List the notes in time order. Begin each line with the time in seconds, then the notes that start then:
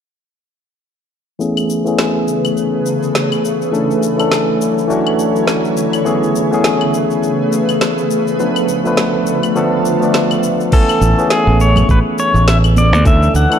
1.39 C#3 E3 A3 B3 C#4 G#4 B4, shaker
1.57 claves, shaker
1.70 shaker
1.85 E3 A3 B3 C#4 G#4, shaker
1.99 snare, shaker
2.28 shaker
2.45 claves, shaker
2.57 shaker
2.86 shaker
3.03 shaker
3.15 snare, shaker
3.32 claves, shaker
3.45 shaker
3.62 shaker
3.71 D3 E3 F#3 A3 C#4 D4 E4 A4 C#5, shaker
3.91 shaker
4.03 shaker
4.17 E3 A3 C#4 D4 A4, claves, shaker
4.32 snare, shaker
4.61 shaker
4.78 shaker
4.88 E3 A3 C#4 D4 F#4, shaker
5.07 claves
5.19 shaker
5.36 shaker
5.47 snare, shaker
5.65 shaker
5.77 shaker
5.93 claves, shaker
6.05 C#3 E3 A3 B3 C#4 G#4 B4, shaker
6.23 shaker
6.36 shaker
6.51 E3 A3 B3 C#4 G#4, shaker
6.64 snare, shaker
6.81 claves
6.94 shaker
7.11 shaker
7.23 shaker
7.53 shaker
7.69 claves, shaker
7.81 snare, shaker
7.98 shaker
8.11 shaker
8.27 shaker
8.39 D3 F3 A3 B3 D4 F4 B4, shaker
8.56 claves, shaker
8.68 shaker
8.84 F3 A3 B3 D4 B4, shaker
8.97 snare, shaker
9.27 shaker
9.43 claves, shaker
9.55 F3 A3 B3 D4 A4, shaker
9.85 shaker
10.00 F3 A3 B3 D4 D5, shaker
10.14 snare, shaker
10.31 claves, shaker
10.43 shaker
10.60 shaker
10.72 E3 A3 B3 C#4 A4 G#5, kick, crash, shaker
10.89 claves, shaker
11.01 A1, shaker
11.17 E3 A3 B3 C#4 G#4, shaker
11.30 G#4, snare, shaker
11.47 A1
11.60 C#5, shaker
11.76 low conga, claves, shaker
11.89 A1 B4, kick, shaker
12.18 C#5, shaker
12.34 A1, shaker
12.48 E5, snare, shaker
12.64 claves, shaker
12.76 D5, high conga, shaker
12.93 D2, shaker
13.05 E3 A3 C#4 D4 A4 E5, kick, shaker
13.23 shaker
13.34 D2 F#5, shaker
13.50 E3 A3 D4 E4 A4, claves, shaker